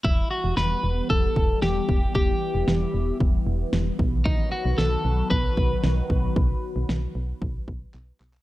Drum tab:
CP |----------------|----------------|----------------|------------x-xx|
SD |----o-------o---|----o-------o---|----o-------o---|----o-----------|
BD |o-------o-o---o-|o-------o-----o-|o-------o-o---o-|o-------o-o-----|